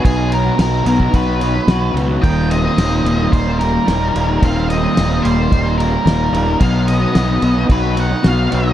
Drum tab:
CC |x-x-x-x-x-x-x-x-|x-x-x-x-x-x-x-x-|x-x-x-x-x-x-x-x-|x-x-x-x-x-x-x-x-|
SD |----o-------o---|----o-------o---|----o-------o---|----o-------o---|
BD |o------oo-------|o-------o-------|o-------o-------|o-------o-------|